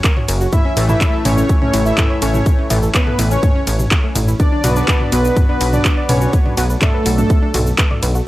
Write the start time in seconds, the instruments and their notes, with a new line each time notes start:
Already playing: analog synth pad F#3 C#4 F#4 A#4
0.04 synth arpeggio sound A#4, kick, clap, ride, shaker
0.17 synth arpeggio sound C#5, mid tom
0.28 analog synth bass F#1, synth arpeggio sound A#4, open hi-hat, ride, shaker
0.41 synth arpeggio sound F#4, shaker
0.53 analog synth pad E3 A3, synth arpeggio sound A3, analog synth lead E4, supersaw synth E5, kick, mid tom, ride, shaker
0.65 synth arpeggio sound C#4
0.77 analog synth bass A1, analog polysynth A2 E3 A3, synth arpeggio sound E4, open hi-hat, ride, shaker
0.89 analog synth lead E4, synth arpeggio sound A4, supersaw synth E5, mid tom, shaker
1.01 synth arpeggio sound C#5, kick, clap, ride, shaker
1.13 synth arpeggio sound A4
1.25 analog synth bass A1, analog synth lead C#4, synth arpeggio sound E4, supersaw synth C#5, mid tom, open hi-hat, ride, shaker
1.38 synth arpeggio sound C#4, shaker
1.49 synth arpeggio sound A3, kick, ride, shaker
1.62 analog synth lead C#4, synth arpeggio sound C#4, supersaw synth C#5, mid tom
1.74 analog synth bass A1, synth arpeggio sound E4, open hi-hat, ride, shaker
1.86 analog synth lead E4, supersaw synth E5, shaker
1.98 synth arpeggio sound A4, kick, clap, mid tom, ride, shaker
2.10 synth arpeggio sound C#5
2.22 analog synth bass A1, analog synth lead C#4, synth arpeggio sound A4, supersaw synth C#5, open hi-hat, ride, shaker
2.34 synth arpeggio sound E4, mid tom, shaker
2.46 synth arpeggio sound A3, kick, ride, shaker
2.59 synth arpeggio sound C#4
2.70 analog synth bass A1, analog polysynth A2 E3 A3, synth arpeggio sound E4, mid tom, open hi-hat, ride, shaker
2.83 synth arpeggio sound A4, shaker
2.95 analog synth lead B3, supersaw synth B4, synth arpeggio sound C#5, kick, clap, ride, shaker
3.07 synth arpeggio sound A4, mid tom
3.19 analog synth bass A1, synth arpeggio sound E4, open hi-hat, ride, shaker
3.31 analog synth lead C#4, synth arpeggio sound C#4, supersaw synth C#5, shaker
3.43 synth arpeggio sound A3, kick, mid tom, ride, shaker
3.55 synth arpeggio sound C#4
3.67 analog synth bass A1, synth arpeggio sound C#4, open hi-hat, ride, shaker
3.79 mid tom, shaker
3.91 synth arpeggio sound C#4, kick, clap, ride, shaker
4.04 synth arpeggio sound A3
4.16 analog synth bass A1, synth arpeggio sound E4, mid tom, open hi-hat, ride, shaker
4.28 synth arpeggio sound E4, shaker
4.40 analog synth pad F#3 B3 D4, synth arpeggio sound B3, analog synth lead D4, supersaw synth D5, kick, ride, shaker
4.52 synth arpeggio sound D4
4.64 analog synth bass B1, analog polysynth B3 F#4 B4, synth arpeggio sound F#4, mid tom, open hi-hat, ride, shaker
4.76 analog synth lead D4, synth arpeggio sound B4, supersaw synth D5, shaker
4.88 synth arpeggio sound D5, kick, clap, ride, shaker
5.00 synth arpeggio sound B4, mid tom
5.12 analog synth bass B1, analog synth lead B3, synth arpeggio sound F#4, supersaw synth B4, open hi-hat, ride, shaker
5.25 synth arpeggio sound D4, shaker
5.37 synth arpeggio sound B3, kick, mid tom, ride, shaker
5.49 analog synth lead B3, synth arpeggio sound D4, supersaw synth B4
5.61 analog synth bass B1, synth arpeggio sound F#4, open hi-hat, ride, shaker
5.73 analog synth lead D4, supersaw synth D5, mid tom, shaker
5.85 synth arpeggio sound B4, kick, clap, ride, shaker
5.97 synth arpeggio sound D5
6.09 analog synth bass B1, analog synth lead C#4, synth arpeggio sound B4, supersaw synth C#5, mid tom, open hi-hat, ride, shaker
6.21 synth arpeggio sound F#4, shaker
6.33 analog synth pad A3, synth arpeggio sound B3, kick, ride, shaker
6.46 synth arpeggio sound D4, mid tom
6.57 analog synth bass B1, analog polysynth B3 F#4 B4, synth arpeggio sound F#4, open hi-hat, ride, shaker
6.70 synth arpeggio sound B4, shaker
6.82 analog synth lead A3, supersaw synth A4, synth arpeggio sound D5, kick, clap, mid tom, ride, shaker
6.94 synth arpeggio sound B4
7.06 analog synth bass B1, synth arpeggio sound F#4, open hi-hat, ride, shaker
7.18 analog synth lead A3, synth arpeggio sound D4, supersaw synth A4, mid tom, shaker
7.30 synth arpeggio sound B3, kick, ride, shaker
7.42 synth arpeggio sound D4
7.54 analog synth bass B1, synth arpeggio sound F#4, mid tom, open hi-hat, ride, shaker
7.67 shaker
7.78 synth arpeggio sound B4, kick, clap, ride, shaker
7.91 synth arpeggio sound D5, mid tom
8.03 analog synth bass B1, synth arpeggio sound B4, open hi-hat, ride, shaker
8.15 synth arpeggio sound F#4, shaker